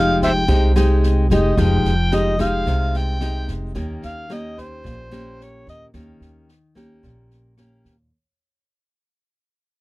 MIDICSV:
0, 0, Header, 1, 5, 480
1, 0, Start_track
1, 0, Tempo, 545455
1, 1385, Time_signature, 4, 2, 24, 8
1, 8625, End_track
2, 0, Start_track
2, 0, Title_t, "Harmonica"
2, 0, Program_c, 0, 22
2, 0, Note_on_c, 0, 77, 91
2, 160, Note_off_c, 0, 77, 0
2, 210, Note_on_c, 0, 72, 62
2, 210, Note_on_c, 0, 76, 62
2, 210, Note_on_c, 0, 79, 89
2, 266, Note_off_c, 0, 76, 0
2, 288, Note_off_c, 0, 72, 0
2, 645, Note_off_c, 0, 79, 0
2, 1170, Note_on_c, 0, 75, 48
2, 1410, Note_on_c, 0, 79, 92
2, 1424, Note_off_c, 0, 75, 0
2, 1888, Note_on_c, 0, 75, 77
2, 1901, Note_off_c, 0, 79, 0
2, 2113, Note_off_c, 0, 75, 0
2, 2119, Note_on_c, 0, 77, 91
2, 2610, Note_on_c, 0, 79, 88
2, 2624, Note_off_c, 0, 77, 0
2, 3078, Note_off_c, 0, 79, 0
2, 3565, Note_on_c, 0, 77, 86
2, 3813, Note_on_c, 0, 75, 75
2, 3826, Note_off_c, 0, 77, 0
2, 4053, Note_on_c, 0, 72, 80
2, 4066, Note_off_c, 0, 75, 0
2, 4777, Note_on_c, 0, 73, 69
2, 4790, Note_off_c, 0, 72, 0
2, 5002, Note_off_c, 0, 73, 0
2, 5013, Note_on_c, 0, 75, 79
2, 5149, Note_off_c, 0, 75, 0
2, 8625, End_track
3, 0, Start_track
3, 0, Title_t, "Nylon-string guitar"
3, 0, Program_c, 1, 24
3, 0, Note_on_c, 1, 53, 56
3, 0, Note_on_c, 1, 56, 52
3, 0, Note_on_c, 1, 63, 50
3, 0, Note_on_c, 1, 67, 65
3, 383, Note_off_c, 1, 56, 0
3, 386, Note_off_c, 1, 67, 0
3, 387, Note_off_c, 1, 63, 0
3, 399, Note_off_c, 1, 53, 0
3, 423, Note_on_c, 1, 48, 56
3, 425, Note_on_c, 1, 56, 58
3, 428, Note_on_c, 1, 63, 57
3, 431, Note_on_c, 1, 67, 56
3, 626, Note_off_c, 1, 56, 0
3, 626, Note_off_c, 1, 63, 0
3, 630, Note_off_c, 1, 67, 0
3, 667, Note_on_c, 1, 56, 64
3, 670, Note_on_c, 1, 63, 60
3, 675, Note_on_c, 1, 67, 66
3, 1108, Note_off_c, 1, 56, 0
3, 1108, Note_off_c, 1, 63, 0
3, 1112, Note_off_c, 1, 67, 0
3, 1154, Note_on_c, 1, 56, 56
3, 1159, Note_on_c, 1, 63, 52
3, 1164, Note_on_c, 1, 67, 65
3, 1352, Note_off_c, 1, 56, 0
3, 1353, Note_off_c, 1, 63, 0
3, 1356, Note_off_c, 1, 67, 0
3, 1361, Note_off_c, 1, 48, 0
3, 1386, Note_on_c, 1, 53, 53
3, 1392, Note_on_c, 1, 56, 50
3, 1394, Note_on_c, 1, 67, 53
3, 1396, Note_on_c, 1, 63, 54
3, 1697, Note_off_c, 1, 56, 0
3, 1697, Note_off_c, 1, 63, 0
3, 1699, Note_off_c, 1, 67, 0
3, 1865, Note_on_c, 1, 56, 50
3, 1869, Note_on_c, 1, 63, 57
3, 1872, Note_on_c, 1, 67, 60
3, 2067, Note_off_c, 1, 56, 0
3, 2067, Note_off_c, 1, 63, 0
3, 2070, Note_off_c, 1, 67, 0
3, 2103, Note_on_c, 1, 56, 52
3, 2110, Note_on_c, 1, 63, 52
3, 2113, Note_on_c, 1, 67, 59
3, 2323, Note_off_c, 1, 53, 0
3, 2347, Note_on_c, 1, 48, 57
3, 2786, Note_off_c, 1, 56, 0
3, 2789, Note_off_c, 1, 63, 0
3, 2791, Note_off_c, 1, 67, 0
3, 2826, Note_on_c, 1, 56, 52
3, 2832, Note_on_c, 1, 63, 48
3, 2838, Note_on_c, 1, 67, 54
3, 3282, Note_off_c, 1, 48, 0
3, 3287, Note_off_c, 1, 56, 0
3, 3290, Note_off_c, 1, 63, 0
3, 3293, Note_off_c, 1, 67, 0
3, 3297, Note_on_c, 1, 51, 49
3, 3302, Note_on_c, 1, 58, 52
3, 3302, Note_on_c, 1, 61, 53
3, 3306, Note_on_c, 1, 67, 53
3, 3745, Note_off_c, 1, 58, 0
3, 3746, Note_off_c, 1, 61, 0
3, 3746, Note_off_c, 1, 67, 0
3, 3780, Note_on_c, 1, 58, 48
3, 3784, Note_on_c, 1, 61, 60
3, 3785, Note_on_c, 1, 67, 59
3, 4238, Note_off_c, 1, 51, 0
3, 4260, Note_on_c, 1, 46, 56
3, 4465, Note_off_c, 1, 58, 0
3, 4466, Note_off_c, 1, 61, 0
3, 4467, Note_off_c, 1, 67, 0
3, 4501, Note_on_c, 1, 58, 60
3, 4504, Note_on_c, 1, 61, 62
3, 4509, Note_on_c, 1, 67, 68
3, 5185, Note_off_c, 1, 58, 0
3, 5188, Note_off_c, 1, 61, 0
3, 5189, Note_off_c, 1, 67, 0
3, 5199, Note_off_c, 1, 46, 0
3, 5226, Note_on_c, 1, 51, 48
3, 5226, Note_on_c, 1, 58, 52
3, 5231, Note_on_c, 1, 61, 54
3, 5234, Note_on_c, 1, 67, 47
3, 5704, Note_off_c, 1, 58, 0
3, 5706, Note_off_c, 1, 67, 0
3, 5707, Note_off_c, 1, 61, 0
3, 5943, Note_on_c, 1, 58, 55
3, 5950, Note_on_c, 1, 61, 52
3, 5956, Note_on_c, 1, 67, 60
3, 6163, Note_off_c, 1, 51, 0
3, 6187, Note_on_c, 1, 46, 50
3, 6627, Note_off_c, 1, 58, 0
3, 6631, Note_off_c, 1, 61, 0
3, 6632, Note_off_c, 1, 67, 0
3, 6668, Note_on_c, 1, 58, 49
3, 6674, Note_on_c, 1, 61, 47
3, 6676, Note_on_c, 1, 67, 56
3, 6990, Note_off_c, 1, 58, 0
3, 6993, Note_off_c, 1, 67, 0
3, 6994, Note_off_c, 1, 61, 0
3, 7124, Note_off_c, 1, 46, 0
3, 8625, End_track
4, 0, Start_track
4, 0, Title_t, "Upright bass"
4, 0, Program_c, 2, 32
4, 0, Note_on_c, 2, 29, 75
4, 386, Note_off_c, 2, 29, 0
4, 426, Note_on_c, 2, 36, 82
4, 1111, Note_off_c, 2, 36, 0
4, 1143, Note_on_c, 2, 29, 78
4, 1368, Note_off_c, 2, 29, 0
4, 1385, Note_on_c, 2, 29, 96
4, 1609, Note_off_c, 2, 29, 0
4, 1617, Note_on_c, 2, 29, 74
4, 2306, Note_off_c, 2, 29, 0
4, 2340, Note_on_c, 2, 36, 75
4, 3028, Note_off_c, 2, 36, 0
4, 3067, Note_on_c, 2, 29, 73
4, 3290, Note_off_c, 2, 29, 0
4, 3307, Note_on_c, 2, 39, 99
4, 3530, Note_off_c, 2, 39, 0
4, 3553, Note_on_c, 2, 39, 74
4, 4235, Note_off_c, 2, 39, 0
4, 4269, Note_on_c, 2, 34, 78
4, 4952, Note_off_c, 2, 34, 0
4, 4988, Note_on_c, 2, 39, 82
4, 5211, Note_off_c, 2, 39, 0
4, 5228, Note_on_c, 2, 39, 93
4, 5451, Note_off_c, 2, 39, 0
4, 5459, Note_on_c, 2, 39, 69
4, 6148, Note_off_c, 2, 39, 0
4, 6190, Note_on_c, 2, 34, 81
4, 6874, Note_off_c, 2, 34, 0
4, 6907, Note_on_c, 2, 39, 73
4, 7131, Note_off_c, 2, 39, 0
4, 8625, End_track
5, 0, Start_track
5, 0, Title_t, "Drums"
5, 186, Note_on_c, 9, 36, 22
5, 192, Note_on_c, 9, 38, 23
5, 274, Note_off_c, 9, 36, 0
5, 280, Note_off_c, 9, 38, 0
5, 426, Note_on_c, 9, 36, 52
5, 428, Note_on_c, 9, 38, 22
5, 514, Note_off_c, 9, 36, 0
5, 516, Note_off_c, 9, 38, 0
5, 669, Note_on_c, 9, 37, 61
5, 669, Note_on_c, 9, 38, 23
5, 757, Note_off_c, 9, 37, 0
5, 757, Note_off_c, 9, 38, 0
5, 907, Note_on_c, 9, 38, 21
5, 995, Note_off_c, 9, 38, 0
5, 1145, Note_on_c, 9, 36, 25
5, 1146, Note_on_c, 9, 38, 23
5, 1233, Note_off_c, 9, 36, 0
5, 1234, Note_off_c, 9, 38, 0
5, 1384, Note_on_c, 9, 37, 55
5, 1384, Note_on_c, 9, 38, 21
5, 1385, Note_on_c, 9, 36, 55
5, 1472, Note_off_c, 9, 37, 0
5, 1472, Note_off_c, 9, 38, 0
5, 1473, Note_off_c, 9, 36, 0
5, 1624, Note_on_c, 9, 38, 22
5, 1712, Note_off_c, 9, 38, 0
5, 1863, Note_on_c, 9, 38, 23
5, 1951, Note_off_c, 9, 38, 0
5, 2104, Note_on_c, 9, 36, 23
5, 2104, Note_on_c, 9, 37, 51
5, 2104, Note_on_c, 9, 38, 21
5, 2192, Note_off_c, 9, 36, 0
5, 2192, Note_off_c, 9, 37, 0
5, 2192, Note_off_c, 9, 38, 0
5, 2343, Note_on_c, 9, 38, 20
5, 2344, Note_on_c, 9, 36, 54
5, 2431, Note_off_c, 9, 38, 0
5, 2432, Note_off_c, 9, 36, 0
5, 2584, Note_on_c, 9, 38, 22
5, 2672, Note_off_c, 9, 38, 0
5, 2820, Note_on_c, 9, 37, 56
5, 2820, Note_on_c, 9, 38, 22
5, 2908, Note_off_c, 9, 37, 0
5, 2908, Note_off_c, 9, 38, 0
5, 3060, Note_on_c, 9, 38, 24
5, 3063, Note_on_c, 9, 36, 24
5, 3148, Note_off_c, 9, 38, 0
5, 3151, Note_off_c, 9, 36, 0
5, 3299, Note_on_c, 9, 38, 21
5, 3304, Note_on_c, 9, 36, 57
5, 3387, Note_off_c, 9, 38, 0
5, 3392, Note_off_c, 9, 36, 0
5, 3541, Note_on_c, 9, 38, 24
5, 3629, Note_off_c, 9, 38, 0
5, 3785, Note_on_c, 9, 37, 56
5, 3785, Note_on_c, 9, 38, 23
5, 3873, Note_off_c, 9, 37, 0
5, 3873, Note_off_c, 9, 38, 0
5, 4026, Note_on_c, 9, 36, 21
5, 4026, Note_on_c, 9, 38, 21
5, 4114, Note_off_c, 9, 36, 0
5, 4114, Note_off_c, 9, 38, 0
5, 4266, Note_on_c, 9, 36, 52
5, 4269, Note_on_c, 9, 38, 21
5, 4354, Note_off_c, 9, 36, 0
5, 4357, Note_off_c, 9, 38, 0
5, 4508, Note_on_c, 9, 37, 59
5, 4508, Note_on_c, 9, 38, 22
5, 4596, Note_off_c, 9, 37, 0
5, 4596, Note_off_c, 9, 38, 0
5, 4757, Note_on_c, 9, 38, 22
5, 4845, Note_off_c, 9, 38, 0
5, 4987, Note_on_c, 9, 36, 21
5, 4994, Note_on_c, 9, 38, 21
5, 5075, Note_off_c, 9, 36, 0
5, 5082, Note_off_c, 9, 38, 0
5, 5225, Note_on_c, 9, 37, 57
5, 5225, Note_on_c, 9, 38, 23
5, 5227, Note_on_c, 9, 36, 51
5, 5313, Note_off_c, 9, 37, 0
5, 5313, Note_off_c, 9, 38, 0
5, 5315, Note_off_c, 9, 36, 0
5, 5466, Note_on_c, 9, 38, 22
5, 5554, Note_off_c, 9, 38, 0
5, 5707, Note_on_c, 9, 38, 23
5, 5795, Note_off_c, 9, 38, 0
5, 5949, Note_on_c, 9, 36, 23
5, 5951, Note_on_c, 9, 37, 55
5, 5951, Note_on_c, 9, 38, 21
5, 6037, Note_off_c, 9, 36, 0
5, 6039, Note_off_c, 9, 37, 0
5, 6039, Note_off_c, 9, 38, 0
5, 6187, Note_on_c, 9, 38, 20
5, 6188, Note_on_c, 9, 36, 50
5, 6275, Note_off_c, 9, 38, 0
5, 6276, Note_off_c, 9, 36, 0
5, 6428, Note_on_c, 9, 38, 22
5, 6516, Note_off_c, 9, 38, 0
5, 6664, Note_on_c, 9, 37, 54
5, 6664, Note_on_c, 9, 38, 24
5, 6752, Note_off_c, 9, 37, 0
5, 6752, Note_off_c, 9, 38, 0
5, 6905, Note_on_c, 9, 38, 22
5, 6908, Note_on_c, 9, 36, 22
5, 6993, Note_off_c, 9, 38, 0
5, 6996, Note_off_c, 9, 36, 0
5, 8625, End_track
0, 0, End_of_file